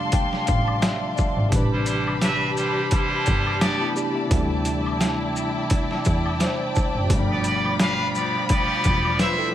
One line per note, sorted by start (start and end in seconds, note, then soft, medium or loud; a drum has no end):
0.00 1.46 C3 medium
0.00 1.47 F3 medium
0.00 1.49 F3 medium
0.00 1.48 G3 medium
0.00 1.49 A3 medium
0.00 1.50 D4 medium
0.00 1.48 D5 medium
0.00 0.11 F5 medium
0.00 1.49 A5 medium
0.00 1.53 A5 medium
0.00 1.49 C6 medium
0.12 0.45 G5 medium
0.12 kick loud
0.12 closed hi-hat medium
0.12 maracas medium
0.33 snare soft
0.46 0.80 A1 medium
0.46 0.79 F5 medium
0.46 kick loud
0.46 closed hi-hat medium
0.46 shaker medium
0.46 maracas soft
0.68 high woodblock medium
0.82 1.15 E5 medium
0.82 snare loud
0.82 closed hi-hat medium
0.82 maracas medium
1.16 1.49 D5 medium
1.16 kick medium
1.16 maracas soft
1.16 shaker medium
1.37 1.51 G#1 medium
1.49 2.73 A1 loud
1.49 4.26 C3 medium
1.49 4.27 E3 medium
1.49 4.28 G4 medium
1.49 9.55 D5 medium
1.49 7.06 A5 medium
1.49 4.28 B5 medium
1.49 kick loud
1.49 closed hi-hat loud
1.49 maracas medium
1.53 4.28 G3 medium
1.53 3.60 D4 medium
1.53 3.59 B4 medium
1.71 1.83 G3 medium
1.71 1.83 E4 medium
1.71 1.83 C5 medium
1.86 2.15 G3 medium
1.86 2.15 E4 medium
1.86 2.15 C5 loud
1.86 closed hi-hat medium
1.86 shaker medium
1.86 maracas medium
2.07 high woodblock medium
2.21 2.50 C4 loud
2.21 2.50 B4 loud
2.21 2.50 E5 loud
2.21 snare loud
2.21 closed hi-hat medium
2.21 maracas medium
2.57 2.85 G3 medium
2.57 2.84 E4 medium
2.57 2.85 C5 medium
2.57 maracas soft
2.57 shaker medium
2.91 3.57 G3 loud
2.91 3.57 E4 loud
2.91 3.57 C5 loud
2.91 kick loud
2.91 closed hi-hat medium
2.91 maracas medium
3.26 3.59 G1 medium
3.26 kick loud
3.26 closed hi-hat medium
3.26 shaker medium
3.26 maracas soft
3.47 high woodblock medium
3.61 3.81 A3 medium
3.61 3.89 B3 loud
3.61 3.81 D4 medium
3.61 3.89 G4 loud
3.61 3.89 D5 loud
3.61 snare loud
3.61 closed hi-hat medium
3.61 maracas medium
3.81 3.96 B3 medium
3.81 3.95 E4 medium
3.96 4.16 D4 medium
3.96 4.15 G4 medium
3.96 maracas soft
3.96 shaker medium
4.15 4.49 B3 medium
4.15 4.49 E4 medium
4.27 7.04 C3 medium
4.27 7.05 E3 medium
4.27 7.07 E4 medium
4.27 9.55 G5 medium
4.27 closed hi-hat loud
4.31 5.52 D2 loud
4.31 7.06 G3 medium
4.31 7.07 A3 medium
4.31 kick loud
4.31 maracas medium
4.35 7.08 D4 medium
4.65 closed hi-hat medium
4.65 shaker medium
4.65 maracas medium
4.86 high woodblock medium
5.00 snare loud
5.00 closed hi-hat medium
5.00 maracas medium
5.36 maracas soft
5.36 shaker medium
5.70 kick loud
5.70 closed hi-hat medium
5.70 maracas medium
5.91 snare soft
6.05 6.38 E2 loud
6.05 kick medium
6.05 closed hi-hat medium
6.05 shaker medium
6.05 maracas soft
6.26 high woodblock medium
6.40 6.73 C5 medium
6.40 snare loud
6.40 closed hi-hat medium
6.40 maracas medium
6.75 7.07 A5 medium
6.75 kick medium
6.75 maracas soft
6.75 shaker medium
6.95 7.09 F#1 medium
7.04 9.55 B2 medium
7.04 9.55 F3 medium
7.04 9.55 G3 medium
7.10 8.31 G1 loud
7.10 9.55 F3 medium
7.10 9.55 A3 medium
7.10 7.18 C#4 medium
7.10 9.55 B5 loud
7.10 kick loud
7.10 closed hi-hat loud
7.10 maracas medium
7.18 9.20 D4 medium
7.30 7.42 B3 medium
7.30 7.42 G4 medium
7.30 7.42 D5 medium
7.44 7.73 B3 medium
7.44 7.73 G4 medium
7.44 7.73 D5 loud
7.44 closed hi-hat medium
7.44 shaker medium
7.44 maracas medium
7.65 high woodblock medium
7.79 8.08 D4 loud
7.79 8.08 B4 loud
7.79 8.08 F5 loud
7.79 snare loud
7.79 closed hi-hat medium
7.79 maracas medium
8.15 8.43 B3 medium
8.15 8.43 G4 medium
8.15 8.43 D5 medium
8.15 maracas soft
8.15 shaker medium
8.49 9.16 B3 loud
8.49 9.16 G4 loud
8.49 9.16 D5 loud
8.49 kick loud
8.49 closed hi-hat medium
8.49 maracas medium
8.84 9.17 E1 medium
8.84 kick loud
8.84 closed hi-hat medium
8.84 shaker medium
8.84 maracas soft
9.05 high woodblock medium
9.19 9.47 E4 medium
9.19 9.39 F4 medium
9.19 9.38 B4 medium
9.19 9.47 C5 loud
9.19 9.47 E5 loud
9.19 snare loud
9.19 closed hi-hat medium
9.19 maracas medium
9.38 9.55 E4 medium
9.38 9.55 A4 medium